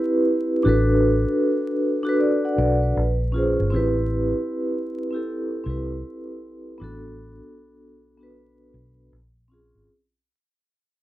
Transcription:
Already playing: vibraphone C4 E4 G4 B4
0.63 fingered electric bass A1, vibraphone D4 F#4 A4
0.69 vibraphone B4
2.03 vibraphone D4 F#4 A4
2.09 vibraphone B4
2.20 vibraphone B4 D5
2.45 vibraphone D5 F#5
2.58 fingered electric bass B1, vibraphone B4 D5
2.83 vibraphone B4
2.97 fingered electric bass A#1
3.32 vibraphone C#4 F4 G#4
3.38 vibraphone C5
3.60 fingered electric bass G1
3.70 fingered electric bass A1, vibraphone C4 E4 G4
3.76 vibraphone B4
5.11 vibraphone C4 E4 G4
5.16 vibraphone A4
5.64 fingered electric bass C2, vibraphone C4 E4 G4
5.70 vibraphone B4
6.78 fingered electric bass A1, vibraphone B3 D4
6.82 vibraphone F#4 A4
8.17 vibraphone B3 D4 F#4
8.23 vibraphone B4
8.74 fingered electric bass B1
9.12 fingered electric bass A#1
9.48 vibraphone C4 C#4 F4
9.53 vibraphone G#4
9.75 fingered electric bass G#1

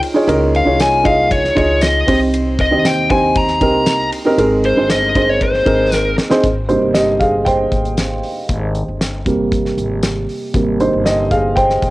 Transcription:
Already playing: grand piano C#4 D#4 F4 G#4 A#4 C5 C#5
0.03 open hi-hat, ride
0.14 grand piano D#4 F4 G#4 C#5
0.27 upright bass C#2, grand piano C#4 D#4 F4 G#4 A#4, hi-hat pedal, ride
0.55 lead electric guitar F5, ride
0.65 upright bass C2, grand piano D#4 F4 G#4 C#5
0.80 lead electric guitar G#5, snare, ride, tambourine
1.03 grand piano D#4 F4 G#4 D#5, lead electric guitar F5, kick, ride
1.31 lead electric guitar C#5, kick, ride
1.44 snare
1.55 upright bass C#2, grand piano D#4 F4 G#4 D#5, lead electric guitar C#5, kick, ride
1.81 lead electric guitar D#5, snare, ride, tambourine
2.06 upright bass C2, grand piano C3 C4 D#4 G4 C5, kick, open hi-hat, ride
2.34 hi-hat pedal, ride
2.59 lead electric guitar D#5, kick, ride
2.71 upright bass D#2, grand piano C4 D#4 G4 D#5
2.85 lead electric guitar G5, snare, ride, tambourine
3.09 grand piano C4 D#4 G4 C5, lead electric guitar G#5, kick, ride
3.35 lead electric guitar A#5, kick, ride
3.48 snare
3.60 upright bass C2, grand piano C4 D#4 G4 A#4, kick, ride
3.86 snare, ride, tambourine
4.12 open hi-hat, ride
4.25 grand piano C4 D#4 G4 A#4
4.38 upright bass G#1, grand piano G#3 C4 D#4 G#4 A#4, hi-hat pedal, ride
4.64 lead electric guitar C5, ride
4.76 upright bass G1, grand piano C4 D#4 G#4 C5
4.90 lead electric guitar D#5, snare, ride, tambourine
5.15 grand piano C4 D#4 G#4 C5, lead electric guitar D#5, kick, ride
5.30 lead electric guitar C#5
5.41 lead electric guitar C5, kick, ride
5.54 snare
5.65 upright bass G#1, grand piano C4 D#4 G#4 A#4, kick, ride
5.92 snare, tambourine
5.96 lead electric guitar A#4
6.18 snare
6.30 grand piano C4 D#4 G#4 C5, snare
6.44 upright bass G#1, kick, closed hi-hat
6.69 grand piano C3 G3 A#3 D#4 C5, closed hi-hat
6.82 upright bass G1
6.94 grand piano G4 D#5, snare, closed hi-hat, tambourine
7.20 grand piano G#4 F5, kick, closed hi-hat
7.45 grand piano C5 G5, kick, closed hi-hat
7.72 upright bass G#1, kick, closed hi-hat
7.85 closed hi-hat
7.97 snare, closed hi-hat, tambourine
8.23 open hi-hat
8.49 upright bass G#1, kick, closed hi-hat
8.75 closed hi-hat
8.88 upright bass G1
9.01 snare, closed hi-hat, tambourine
9.26 grand piano C3 G3 A#3, kick, closed hi-hat
9.52 kick, closed hi-hat
9.65 snare
9.78 upright bass G#1, closed hi-hat
10.03 snare, closed hi-hat, tambourine
10.29 open hi-hat
10.54 upright bass G#1, grand piano C3 G3 A#3, kick, closed hi-hat
10.80 grand piano D#4 C5, closed hi-hat
10.93 upright bass G1
11.05 grand piano G4 D#5, snare, closed hi-hat, tambourine
11.31 grand piano G#4 F5, kick, closed hi-hat
11.56 grand piano C5 G5, kick, closed hi-hat
11.70 snare
11.82 upright bass G#1, kick, closed hi-hat

